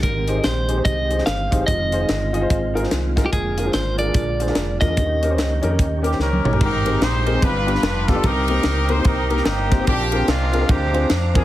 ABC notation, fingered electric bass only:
X:1
M:4/4
L:1/8
Q:"Swing" 1/4=146
K:Ab
V:1 name="Fingered electric bass" clef=bass
A,,,2 B,,,2 C,,2 G,,, _G,,, | F,,,2 G,,,2 A,,,2 C,,2 | F,,,2 A,,,2 B,,,2 F,,, _F,, | E,,2 D,, F,, E,,2 D,, =A,,, |
A,,,2 B,,,2 G,,,2 F,,,2 | C,,2 D,,2 C,,2 G,,,2 | B,,,2 C,,2 =D,,2 F,,2 |]